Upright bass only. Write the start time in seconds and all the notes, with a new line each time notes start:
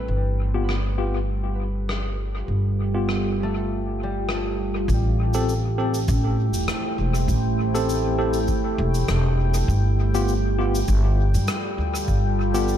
0.08 G1
2.48 G1
4.88 A1
6.08 A1
6.55 E1
6.98 E1
7.28 A1
8.78 E1
9.08 E1
9.68 G1
10.88 G1
11.34 G2
11.78 D2
12.08 G1